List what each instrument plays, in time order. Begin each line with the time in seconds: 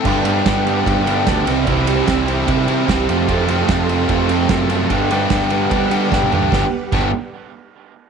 Already playing: string machine G5
0.05 picked electric bass G2, overdriven electric guitar G2 D3 G3 B3 D4 G4, string machine B4 D5 D6, kick, crash
0.25 overdriven electric guitar G2 D3 G3 B3 D4 G4, ride
0.46 picked electric bass G2, overdriven electric guitar G2 D3 G3 B3 D4 G4, kick, snare, ride
0.67 overdriven electric guitar G2 D3 G3 B3 D4 G4, ride
0.86 picked electric bass G2, overdriven electric guitar G2 D3 G3 B3 D4 G4, kick, ride
1.07 overdriven electric guitar G2 D3 G3 B3 D4 G4, ride
1.26 picked electric bass D2, overdriven electric guitar G2 D3 G3 B3 D4 G4, kick, snare, ride
1.47 picked electric bass C2, overdriven electric guitar C3 E3 G3 C4 E4, string machine C5 E5 G5, ride
1.67 overdriven electric guitar C3 E3 G3 C4 E4, kick, ride
1.87 overdriven electric guitar C3 E3 G3 C4 E4, ride
2.07 picked electric bass C2, overdriven electric guitar C3 E3 G3 C4 E4, kick, snare, ride
2.28 overdriven electric guitar C3 E3 G3 C4 E4, ride
2.48 overdriven electric guitar C3 E3 G3 C4 E4, picked electric bass C3, kick, ride
2.68 overdriven electric guitar C3 E3 G3 C4 E4, ride
2.88 picked electric bass C2, overdriven electric guitar C3 E3 G3 C4 E4, kick, snare, ride
3.07 overdriven electric guitar F2 C3 F3 A3 C4 F4, picked electric bass F2, string machine A4 F5 C6, ride
3.28 overdriven electric guitar F2 C3 F3 A3 C4 F4, kick, ride
3.48 overdriven electric guitar F2 C3 F3 A3 C4 F4, ride
3.68 overdriven electric guitar F2 C3 F3 A3 C4 F4, picked electric bass F2, kick, snare, ride
3.89 overdriven electric guitar F2 C3 F3 A3 C4 F4, ride
4.09 overdriven electric guitar F2 C3 F3 A3 C4 F4, picked electric bass F2, kick, ride
4.29 overdriven electric guitar F2 C3 F3 A3 C4 F4, ride
4.49 overdriven electric guitar F2 C3 F3 A3 C4 F4, picked electric bass F#2, kick, snare, ride
4.70 overdriven electric guitar F2 C3 F3 A3 C4 F4, ride
4.89 overdriven electric guitar G2 D3 G3 B3 D4 G4, picked electric bass G2, string machine B4 F#5 D6, kick, ride
5.10 overdriven electric guitar G2 D3 G3 B3 D4 G4, ride
5.30 picked electric bass G2, overdriven electric guitar G2 D3 G3 B3 D4 G4, kick, snare, ride
5.41 snare
5.50 overdriven electric guitar G2 D3 G3 B3 D4 G4, ride
5.70 overdriven electric guitar G2 D3 G3 B3 D4 G4, picked electric bass G3, kick, ride
5.91 overdriven electric guitar G2 D3 G3 B3 D4 G4, ride
6.10 overdriven electric guitar G2 D3 G3 B3 D4 G4, picked electric bass G2, kick, snare
6.22 high tom
6.31 overdriven electric guitar G2 D3 G3 B3 D4 G4, mid tom
6.43 floor tom
6.52 picked electric bass G1, overdriven electric guitar G2 D3 G3 B3 D4 G4, string machine G3 G4 B4 F#5, kick, snare
6.92 picked electric bass G1, overdriven electric guitar G2 D3 G3 B3 D4 G4, kick, crash